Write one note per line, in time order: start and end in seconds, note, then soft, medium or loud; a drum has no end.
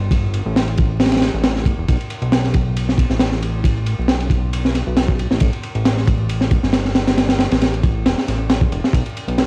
0.00 0.42 G1 loud
0.11 kick loud
0.11 ride medium
0.34 ride medium
0.46 1.30 A1 loud
0.56 snare loud
0.56 ride medium
0.68 ride soft
0.77 kick loud
0.77 ride medium
1.00 snare medium
1.00 ride medium
1.06 snare medium
1.06 ride medium
1.12 snare medium
1.12 ride medium
1.17 snare medium
1.17 ride medium
1.22 snare loud
1.22 ride medium
1.34 1.74 A1 loud
1.44 snare loud
1.44 ride medium
1.56 snare soft
1.65 kick medium
1.65 ride medium
1.78 1.86 E1 medium
1.88 1.98 B1 loud
1.88 kick loud
1.88 ride medium
2.01 ride soft
2.10 ride medium
2.22 3.07 B1 loud
2.22 ride soft
2.32 snare loud
2.32 ride medium
2.44 snare soft
2.54 kick loud
2.54 ride medium
2.77 ride medium
2.89 snare soft
2.98 kick medium
2.98 ride medium
3.10 3.95 A1 loud
3.10 snare soft
3.19 snare loud
3.19 ride medium
3.32 snare soft
3.42 ride medium
3.64 kick loud
3.64 ride medium
3.86 ride medium
3.99 4.83 B1 medium
4.08 snare loud
4.08 ride medium
4.20 ride soft
4.30 kick medium
4.30 ride medium
4.53 ride medium
4.65 snare medium
4.74 snare soft
4.74 ride medium
4.87 5.27 B1 loud
4.97 snare loud
4.97 ride medium
5.08 kick medium
5.19 ride medium
5.31 5.39 A1 medium
5.31 snare medium
5.40 5.51 A1 loud
5.40 kick loud
5.40 ride medium
5.53 ride soft
5.63 ride medium
5.75 6.60 A1 medium
5.75 ride soft
5.85 snare loud
5.85 ride medium
5.97 snare soft
6.07 kick loud
6.07 ride medium
6.29 ride medium
6.41 snare medium
6.51 kick medium
6.51 ride medium
6.63 7.48 G1 loud
6.63 snare soft
6.73 snare loud
6.73 ride medium
6.85 snare soft
6.95 snare loud
6.95 ride medium
7.07 snare loud
7.07 ride medium
7.18 snare loud
7.18 ride medium
7.29 snare loud
7.29 ride medium
7.39 snare loud
7.39 ride medium
7.51 8.05 A1 loud
7.51 snare medium
7.51 ride medium
7.61 snare loud
7.61 ride medium
7.74 ride soft
7.83 kick medium
7.83 ride medium
8.06 8.15 E1 medium
8.06 snare loud
8.06 ride medium
8.18 snare medium
8.28 8.69 A1 medium
8.28 snare soft
8.28 ride medium
8.50 snare loud
8.50 ride medium
8.61 kick loud
8.72 8.82 E1 medium
8.72 ride medium
8.84 snare medium
8.93 9.03 B1 loud
8.93 kick loud
8.93 ride medium
9.06 ride soft
9.17 ride medium
9.28 9.47 B1 medium
9.28 ride soft
9.38 snare loud
9.38 ride medium